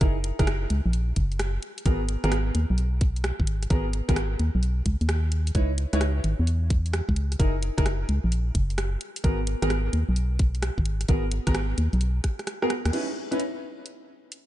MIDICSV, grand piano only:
0, 0, Header, 1, 2, 480
1, 0, Start_track
1, 0, Key_signature, 5, "minor"
1, 0, Tempo, 461538
1, 11, Time_signature, 4, 2, 24, 8
1, 15040, End_track
2, 0, Start_track
2, 0, Title_t, "Grand piano"
2, 0, Program_c, 0, 0
2, 10, Note_on_c, 0, 64, 67
2, 10, Note_on_c, 0, 68, 65
2, 10, Note_on_c, 0, 70, 76
2, 11, Note_on_c, 0, 63, 68
2, 149, Note_off_c, 0, 64, 0
2, 149, Note_off_c, 0, 68, 0
2, 149, Note_off_c, 0, 70, 0
2, 150, Note_off_c, 0, 63, 0
2, 406, Note_on_c, 0, 63, 88
2, 406, Note_on_c, 0, 64, 80
2, 406, Note_on_c, 0, 68, 80
2, 407, Note_on_c, 0, 70, 99
2, 479, Note_off_c, 0, 63, 0
2, 479, Note_off_c, 0, 64, 0
2, 479, Note_off_c, 0, 68, 0
2, 479, Note_off_c, 0, 70, 0
2, 1930, Note_on_c, 0, 59, 69
2, 1930, Note_on_c, 0, 66, 67
2, 1930, Note_on_c, 0, 68, 65
2, 1930, Note_on_c, 0, 70, 79
2, 2069, Note_off_c, 0, 59, 0
2, 2069, Note_off_c, 0, 66, 0
2, 2069, Note_off_c, 0, 68, 0
2, 2069, Note_off_c, 0, 70, 0
2, 2328, Note_on_c, 0, 59, 84
2, 2328, Note_on_c, 0, 66, 77
2, 2328, Note_on_c, 0, 68, 79
2, 2328, Note_on_c, 0, 70, 93
2, 2399, Note_off_c, 0, 59, 0
2, 2399, Note_off_c, 0, 68, 0
2, 2400, Note_off_c, 0, 66, 0
2, 2400, Note_off_c, 0, 70, 0
2, 3851, Note_on_c, 0, 59, 72
2, 3851, Note_on_c, 0, 66, 65
2, 3851, Note_on_c, 0, 68, 67
2, 3851, Note_on_c, 0, 70, 78
2, 3990, Note_off_c, 0, 59, 0
2, 3990, Note_off_c, 0, 66, 0
2, 3990, Note_off_c, 0, 68, 0
2, 3990, Note_off_c, 0, 70, 0
2, 4249, Note_on_c, 0, 66, 78
2, 4249, Note_on_c, 0, 68, 79
2, 4249, Note_on_c, 0, 70, 93
2, 4250, Note_on_c, 0, 59, 89
2, 4320, Note_off_c, 0, 59, 0
2, 4320, Note_off_c, 0, 66, 0
2, 4320, Note_off_c, 0, 68, 0
2, 4320, Note_off_c, 0, 70, 0
2, 5770, Note_on_c, 0, 63, 71
2, 5770, Note_on_c, 0, 64, 64
2, 5770, Note_on_c, 0, 71, 64
2, 5770, Note_on_c, 0, 73, 79
2, 5909, Note_off_c, 0, 63, 0
2, 5909, Note_off_c, 0, 64, 0
2, 5909, Note_off_c, 0, 71, 0
2, 5909, Note_off_c, 0, 73, 0
2, 6170, Note_on_c, 0, 64, 78
2, 6171, Note_on_c, 0, 63, 89
2, 6171, Note_on_c, 0, 71, 80
2, 6171, Note_on_c, 0, 73, 95
2, 6241, Note_off_c, 0, 63, 0
2, 6241, Note_off_c, 0, 64, 0
2, 6241, Note_off_c, 0, 71, 0
2, 6241, Note_off_c, 0, 73, 0
2, 7689, Note_on_c, 0, 68, 63
2, 7689, Note_on_c, 0, 70, 77
2, 7690, Note_on_c, 0, 63, 72
2, 7690, Note_on_c, 0, 64, 66
2, 7829, Note_off_c, 0, 63, 0
2, 7829, Note_off_c, 0, 64, 0
2, 7829, Note_off_c, 0, 68, 0
2, 7829, Note_off_c, 0, 70, 0
2, 8087, Note_on_c, 0, 63, 85
2, 8087, Note_on_c, 0, 64, 79
2, 8087, Note_on_c, 0, 68, 79
2, 8087, Note_on_c, 0, 70, 97
2, 8159, Note_off_c, 0, 63, 0
2, 8159, Note_off_c, 0, 64, 0
2, 8159, Note_off_c, 0, 68, 0
2, 8159, Note_off_c, 0, 70, 0
2, 9607, Note_on_c, 0, 59, 73
2, 9607, Note_on_c, 0, 68, 64
2, 9607, Note_on_c, 0, 70, 80
2, 9608, Note_on_c, 0, 66, 68
2, 9748, Note_off_c, 0, 59, 0
2, 9748, Note_off_c, 0, 66, 0
2, 9748, Note_off_c, 0, 68, 0
2, 9748, Note_off_c, 0, 70, 0
2, 10006, Note_on_c, 0, 66, 81
2, 10007, Note_on_c, 0, 59, 87
2, 10007, Note_on_c, 0, 68, 81
2, 10007, Note_on_c, 0, 70, 99
2, 10079, Note_off_c, 0, 59, 0
2, 10079, Note_off_c, 0, 66, 0
2, 10079, Note_off_c, 0, 68, 0
2, 10079, Note_off_c, 0, 70, 0
2, 11528, Note_on_c, 0, 59, 73
2, 11528, Note_on_c, 0, 70, 79
2, 11529, Note_on_c, 0, 66, 66
2, 11529, Note_on_c, 0, 68, 66
2, 11668, Note_off_c, 0, 59, 0
2, 11668, Note_off_c, 0, 70, 0
2, 11669, Note_off_c, 0, 66, 0
2, 11669, Note_off_c, 0, 68, 0
2, 11927, Note_on_c, 0, 59, 89
2, 11927, Note_on_c, 0, 66, 82
2, 11927, Note_on_c, 0, 68, 78
2, 11927, Note_on_c, 0, 70, 95
2, 11999, Note_off_c, 0, 59, 0
2, 11999, Note_off_c, 0, 66, 0
2, 11999, Note_off_c, 0, 68, 0
2, 11999, Note_off_c, 0, 70, 0
2, 13128, Note_on_c, 0, 66, 71
2, 13129, Note_on_c, 0, 59, 76
2, 13129, Note_on_c, 0, 68, 72
2, 13129, Note_on_c, 0, 70, 86
2, 13200, Note_off_c, 0, 59, 0
2, 13200, Note_off_c, 0, 66, 0
2, 13200, Note_off_c, 0, 68, 0
2, 13200, Note_off_c, 0, 70, 0
2, 13447, Note_on_c, 0, 61, 65
2, 13447, Note_on_c, 0, 64, 60
2, 13448, Note_on_c, 0, 63, 60
2, 13448, Note_on_c, 0, 71, 71
2, 13588, Note_off_c, 0, 61, 0
2, 13588, Note_off_c, 0, 63, 0
2, 13588, Note_off_c, 0, 64, 0
2, 13588, Note_off_c, 0, 71, 0
2, 13845, Note_on_c, 0, 63, 75
2, 13845, Note_on_c, 0, 64, 75
2, 13846, Note_on_c, 0, 61, 80
2, 13846, Note_on_c, 0, 71, 86
2, 13918, Note_off_c, 0, 63, 0
2, 13918, Note_off_c, 0, 64, 0
2, 13918, Note_off_c, 0, 71, 0
2, 13919, Note_off_c, 0, 61, 0
2, 15040, End_track
0, 0, End_of_file